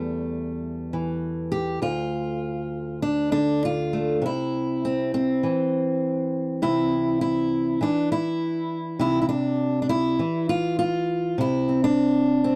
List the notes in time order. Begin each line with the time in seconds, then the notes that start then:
Already playing: E2 G3 A3
0.93 E3
1.52 G4
1.82 D2 F4
3.02 D4
3.32 D3 D4
3.65 F4
3.93 A3
4.22 C3
4.26 E4
4.85 C4
5.14 C4
5.43 E3
6.62 C3 E4
7.21 E4
7.81 E3 D4
8.12 E4
8.99 C3 E4
9.22 E4
9.29 D4
9.82 D4
9.89 E4
10.19 E3
10.49 F4
10.79 F4
11.38 C3 E4
11.68 C4
11.84 D4
12.44 C4